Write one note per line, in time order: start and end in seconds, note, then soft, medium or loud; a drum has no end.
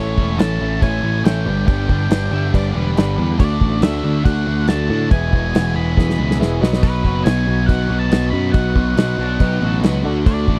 0.00 0.16 A1 medium
0.00 0.16 A2 medium
0.00 0.16 E3 medium
0.00 0.17 A3 medium
0.00 1.45 A3 medium
0.00 0.17 C#4 loud
0.00 1.45 C#4 medium
0.00 0.30 E4 medium
0.00 1.45 E4 medium
0.00 0.17 A4 loud
0.00 0.30 A4 medium
0.00 0.31 C#5 medium
0.00 0.42 C#5 medium
0.00 1.45 C#5 medium
0.17 0.37 E1 medium
0.17 0.37 A2 medium
0.17 0.37 E3 medium
0.17 0.38 A3 medium
0.17 0.39 C#4 medium
0.17 0.39 A4 medium
0.17 kick medium
0.38 0.58 A1 medium
0.38 0.58 A2 medium
0.38 0.59 E3 loud
0.38 0.60 A3 loud
0.38 0.60 C#4 loud
0.38 0.73 E4 medium
0.38 0.74 A4 medium
0.38 0.60 A4 loud
0.38 0.74 C#5 medium
0.38 0.82 A5 medium
0.38 snare loud
0.38 crash medium
0.60 0.80 A1 medium
0.60 0.79 A2 medium
0.60 0.80 E3 medium
0.60 0.81 A3 loud
0.60 0.81 C#4 medium
0.60 0.81 A4 medium
0.81 1.01 A1 loud
0.81 1.01 A2 medium
0.81 1.01 E3 medium
0.81 1.02 A3 loud
0.81 1.02 C#4 loud
0.81 1.16 E4 medium
0.81 1.02 A4 loud
0.81 1.16 A4 medium
0.81 1.17 C#5 medium
0.81 1.22 G#5 loud
0.81 kick medium
0.81 crash medium
1.02 1.23 A1 medium
1.02 1.23 A2 medium
1.02 1.23 E3 medium
1.02 1.24 A3 medium
1.02 1.24 C#4 medium
1.02 1.25 A4 medium
1.24 1.47 A1 medium
1.24 1.45 A2 medium
1.24 1.45 E3 medium
1.24 1.45 A3 loud
1.24 1.45 C#4 loud
1.24 1.46 E4 medium
1.24 1.47 A4 medium
1.24 1.46 A4 loud
1.24 1.47 C#5 medium
1.24 1.65 G5 medium
1.24 snare loud
1.24 crash medium
1.45 1.66 G1 medium
1.45 1.65 G2 loud
1.45 1.66 D3 loud
1.45 1.66 G3 loud
1.45 3.37 B3 medium
1.45 1.67 B3 loud
1.45 3.37 D4 medium
1.45 1.68 D4 loud
1.45 1.97 G4 medium
1.45 3.37 G4 medium
1.45 1.67 G4 loud
1.45 1.97 B4 medium
1.45 3.37 D5 medium
1.45 1.98 D5 medium
1.67 1.87 G1 medium
1.67 1.87 G2 medium
1.67 1.88 D3 medium
1.67 1.88 G3 loud
1.67 1.88 B3 loud
1.67 1.90 D4 loud
1.67 1.89 G4 loud
1.67 2.49 G5 medium
1.67 kick loud
1.67 crash medium
1.88 2.09 G1 medium
1.88 2.08 G2 medium
1.88 2.08 D3 medium
1.88 2.08 G3 medium
1.88 2.09 B3 medium
1.88 2.10 D4 medium
1.88 2.10 G4 medium
1.88 kick medium
2.09 2.30 G1 medium
2.09 2.29 G2 loud
2.09 2.30 D3 loud
2.09 2.30 G3 loud
2.09 2.31 B3 loud
2.09 2.32 D4 loud
2.09 2.32 G4 loud
2.09 2.45 G4 medium
2.09 2.45 B4 medium
2.09 2.46 D5 medium
2.09 snare loud
2.09 crash medium
2.30 2.51 G1 medium
2.30 2.50 G2 medium
2.30 2.50 D3 medium
2.30 2.51 G3 medium
2.30 2.52 B3 medium
2.30 2.52 D4 medium
2.30 2.52 G4 medium
2.34 2.54 E5 loud
2.51 2.73 G1 medium
2.51 2.72 G2 loud
2.51 2.72 D3 loud
2.51 2.73 G3 loud
2.51 2.73 B3 loud
2.51 2.74 D4 loud
2.51 2.74 G4 loud
2.51 2.88 G4 medium
2.51 2.88 B4 medium
2.51 2.89 D5 medium
2.51 kick medium
2.51 crash medium
2.57 2.76 D5 medium
2.73 2.95 E1 medium
2.73 2.94 G2 medium
2.73 2.94 D3 medium
2.73 2.95 G3 medium
2.73 2.95 B3 medium
2.73 2.95 D4 medium
2.73 2.96 G4 medium
2.77 3.18 G2 medium
2.77 2.97 B4 medium
2.95 3.16 G1 loud
2.95 3.16 G2 medium
2.95 3.16 D3 medium
2.95 3.16 G3 medium
2.95 3.17 B3 medium
2.95 3.17 D4 loud
2.95 3.31 G4 medium
2.95 3.17 G4 loud
2.95 3.32 B4 medium
2.95 3.32 D5 medium
2.95 snare loud
2.95 crash medium
2.99 3.29 B4 loud
3.17 3.38 E2 medium
3.17 3.38 G2 medium
3.17 3.36 D3 medium
3.17 3.37 G3 medium
3.17 3.38 B3 loud
3.17 3.38 D4 loud
3.17 3.39 G4 loud
3.38 3.59 D2 medium
3.38 3.58 D3 loud
3.38 3.58 A3 loud
3.38 5.10 A3 medium
3.38 3.59 D4 loud
3.38 5.10 D4 medium
3.38 3.59 F#4 loud
3.38 3.74 F#4 medium
3.38 5.10 F#4 medium
3.38 3.74 A4 medium
3.38 3.84 D5 medium
3.38 5.10 D5 medium
3.38 3.75 D5 medium
3.38 kick loud
3.38 crash medium
3.59 3.81 A1 medium
3.59 3.80 D3 medium
3.59 3.80 A3 medium
3.59 3.81 D4 medium
3.59 3.81 F#4 loud
3.59 kick medium
3.81 4.01 D2 medium
3.81 4.02 D3 loud
3.81 4.03 A3 medium
3.81 4.03 D4 loud
3.81 4.04 F#4 loud
3.81 4.17 F#4 medium
3.81 4.17 A4 medium
3.81 4.18 D5 medium
3.81 4.23 E5 medium
3.81 snare loud
3.81 crash medium
4.03 4.23 D2 medium
4.03 4.23 D3 medium
4.03 4.23 A3 medium
4.03 4.24 D4 medium
4.03 4.24 F#4 medium
4.24 4.45 D2 medium
4.24 4.45 D3 loud
4.24 4.45 A3 loud
4.24 4.45 D4 loud
4.24 4.59 F#4 medium
4.24 4.46 F#4 loud
4.24 4.60 A4 medium
4.24 4.60 D5 medium
4.24 4.70 F#5 medium
4.24 kick medium
4.24 crash medium
4.46 4.67 D2 medium
4.46 4.66 D3 medium
4.46 4.66 A3 medium
4.46 4.67 D4 medium
4.46 4.67 F#4 loud
4.67 4.88 D2 medium
4.67 4.87 D3 medium
4.67 4.88 A3 loud
4.67 4.88 D4 medium
4.67 4.89 F#4 loud
4.67 5.03 F#4 medium
4.67 5.03 A4 medium
4.67 5.04 D5 medium
4.67 5.08 A5 medium
4.67 snare loud
4.67 crash medium
4.88 5.09 A2 loud
4.88 5.09 D3 loud
4.88 5.10 A3 medium
4.88 5.10 D4 loud
4.88 5.10 F#4 loud
5.10 5.31 E1 medium
5.10 5.30 E2 loud
5.10 5.31 B2 loud
5.10 5.31 E3 loud
5.10 5.31 G#3 loud
5.10 6.60 B3 medium
5.10 5.33 B3 loud
5.10 6.60 E4 medium
5.10 5.46 G#4 medium
5.10 6.60 G#4 medium
5.10 5.32 G#4 loud
5.10 5.46 B4 medium
5.10 6.60 E5 medium
5.10 5.46 E5 medium
5.10 5.76 G#5 medium
5.10 kick loud
5.10 crash medium
5.31 5.52 E1 medium
5.31 5.52 E2 medium
5.31 5.52 B2 medium
5.31 5.52 E3 medium
5.31 5.53 G#3 medium
5.31 5.54 B3 medium
5.31 5.54 G#4 medium
5.31 kick medium
5.53 5.74 E1 medium
5.53 5.73 E2 loud
5.53 5.73 B2 loud
5.53 5.74 E3 loud
5.53 5.74 G#3 loud
5.53 5.75 B3 medium
5.53 5.89 G#4 medium
5.53 5.75 G#4 loud
5.53 5.89 B4 medium
5.53 5.89 F#5 medium
5.53 snare loud
5.53 crash medium
5.74 5.95 E1 medium
5.74 5.95 E2 medium
5.74 5.95 B2 medium
5.74 5.96 E3 loud
5.74 5.96 G#3 medium
5.74 5.97 B3 medium
5.74 5.97 G#4 loud
5.74 6.36 B5 loud
5.78 6.37 E2 medium
5.96 6.17 E1 medium
5.96 6.16 E2 loud
5.96 6.17 B2 loud
5.96 6.17 E3 loud
5.96 6.18 G#3 loud
5.96 6.18 B3 loud
5.96 6.31 G#4 medium
5.96 6.18 G#4 loud
5.96 6.32 B4 medium
5.96 6.32 E5 medium
5.96 kick medium
5.96 snare medium
6.10 snare medium
6.17 6.38 C#2 medium
6.17 6.38 E2 loud
6.17 6.38 B2 medium
6.17 6.39 E3 medium
6.17 6.39 G#3 medium
6.17 6.40 B3 medium
6.17 6.40 G#4 medium
6.31 snare medium
6.39 6.60 E1 medium
6.39 6.60 E2 medium
6.39 6.59 B2 loud
6.39 6.60 E3 medium
6.39 6.60 G#3 loud
6.39 6.61 B3 loud
6.39 6.61 G#4 medium
6.39 6.61 G#4 loud
6.39 6.60 B4 medium
6.39 6.62 E5 loud
6.39 snare medium
6.60 6.81 B1 medium
6.60 6.81 B2 loud
6.60 6.82 F#3 loud
6.60 6.82 B3 loud
6.60 10.02 B3 medium
6.60 6.83 D#4 loud
6.60 10.02 D#4 medium
6.60 7.13 F#4 medium
6.60 6.83 F#4 loud
6.60 10.02 F#4 medium
6.60 7.13 B4 medium
6.60 7.13 D#5 loud
6.60 10.02 D#5 medium
6.60 snare loud
6.73 snare medium
6.82 7.03 B1 medium
6.82 7.03 B2 medium
6.82 7.03 F#3 loud
6.82 7.04 B3 medium
6.82 7.04 D#4 loud
6.82 7.05 F#4 loud
6.82 7.23 B4 medium
6.82 kick loud
6.82 crash medium
7.03 7.24 F#1 medium
7.03 7.24 B2 medium
7.03 7.25 F#3 medium
7.03 7.25 B3 medium
7.03 7.26 D#4 medium
7.03 7.26 F#4 medium
7.03 kick medium
7.24 7.46 B1 medium
7.24 7.45 B2 medium
7.24 7.46 F#3 loud
7.24 7.46 B3 medium
7.24 7.47 D#4 medium
7.24 7.60 F#4 medium
7.24 7.48 F#4 loud
7.24 7.60 B4 medium
7.24 7.60 D#5 medium
7.24 7.69 G#5 medium
7.24 snare loud
7.24 crash medium
7.46 7.67 B1 medium
7.46 7.67 B2 medium
7.46 7.68 F#3 medium
7.46 7.68 B3 medium
7.46 7.69 D#4 loud
7.46 7.70 F#4 loud
7.66 7.88 B1 loud
7.66 7.88 B2 loud
7.66 7.89 F#3 loud
7.66 7.89 B3 loud
7.66 7.89 D#4 loud
7.66 8.03 F#4 medium
7.66 7.90 F#4 loud
7.66 8.03 B4 medium
7.66 8.03 D#5 medium
7.66 7.97 F#5 loud
7.66 kick medium
7.66 crash medium
7.89 8.09 B1 medium
7.89 8.10 B2 medium
7.89 8.11 F#3 medium
7.89 8.11 B3 medium
7.89 8.11 D#4 medium
7.89 8.12 F#4 medium
7.99 8.30 A5 medium
8.11 8.31 B1 medium
8.11 8.31 B2 medium
8.11 8.33 F#3 medium
8.11 8.32 B3 loud
8.11 8.33 D#4 loud
8.11 8.46 F#4 medium
8.11 8.34 F#4 loud
8.11 8.46 B4 medium
8.11 8.46 D#5 medium
8.11 snare loud
8.11 crash medium
8.30 8.53 F#2 medium
8.30 8.53 B2 medium
8.30 8.54 F#3 medium
8.30 8.54 B3 medium
8.30 8.54 D#4 medium
8.30 8.55 F#4 loud
8.30 8.52 B5 loud
8.52 8.74 B1 medium
8.52 8.74 B2 loud
8.52 8.75 F#3 medium
8.52 8.75 B3 loud
8.52 8.76 D#4 loud
8.52 8.88 F#4 medium
8.52 8.89 B4 medium
8.52 8.89 D#5 medium
8.52 9.78 F#5 loud
8.52 kick loud
8.52 crash medium
8.56 8.77 F#4 loud
8.75 8.95 B1 medium
8.75 8.96 B2 medium
8.75 8.97 F#3 medium
8.75 8.96 B3 medium
8.75 8.97 D#4 medium
8.75 8.98 F#4 medium
8.75 kick medium
8.96 9.17 B1 medium
8.96 9.17 B2 medium
8.96 9.18 F#3 loud
8.96 9.18 B3 loud
8.96 9.18 D#4 loud
8.96 9.31 F#4 medium
8.96 9.20 F#4 loud
8.96 9.31 B4 medium
8.96 9.32 D#5 medium
8.96 snare loud
8.96 crash medium
9.18 9.38 B1 medium
9.18 9.38 B2 medium
9.18 9.38 F#3 medium
9.18 9.39 B3 medium
9.18 9.41 D4 medium
9.18 9.39 D#4 loud
9.18 9.40 F#4 medium
9.39 9.60 B1 loud
9.39 9.59 B2 loud
9.39 9.60 F#3 loud
9.39 9.60 B3 loud
9.39 9.60 D#4 loud
9.39 9.74 F#4 medium
9.39 9.61 F#4 loud
9.39 9.75 B4 medium
9.39 9.75 D#5 medium
9.39 kick medium
9.39 crash medium
9.43 9.63 G4 medium
9.60 9.81 A1 medium
9.60 9.81 B2 medium
9.60 9.81 F#3 medium
9.60 9.82 B3 medium
9.60 9.82 D#4 loud
9.60 9.83 F#4 medium
9.60 9.84 A4 medium
9.65 10.03 B2 medium
9.82 10.03 C#2 medium
9.82 10.03 B2 loud
9.82 10.03 F#3 loud
9.82 10.03 B3 loud
9.82 10.04 D#4 loud
9.82 10.04 F#4 medium
9.82 10.04 F#4 loud
9.82 10.05 B4 medium
9.82 10.05 D#5 loud
9.82 snare loud
9.82 crash medium
9.86 10.16 F#4 loud
10.04 10.25 D2 loud
10.04 10.24 D3 loud
10.04 10.25 A3 loud
10.04 10.59 A3 medium
10.04 10.26 D4 loud
10.04 10.59 D4 medium
10.04 10.59 F#4 medium
10.04 10.26 F#4 loud
10.04 10.57 F#4 medium
10.04 10.57 A4 medium
10.04 10.59 D5 medium
10.04 10.57 D5 loud
10.26 10.46 D2 medium
10.26 10.45 D3 loud
10.26 10.46 A3 medium
10.26 10.46 D4 medium
10.26 10.47 F#4 loud
10.26 10.59 D5 medium
10.26 kick loud
10.26 crash medium
10.47 10.59 A1 medium
10.47 10.59 D3 medium
10.47 10.59 A3 medium
10.47 10.59 D4 medium
10.47 10.59 F#4 medium
10.47 kick medium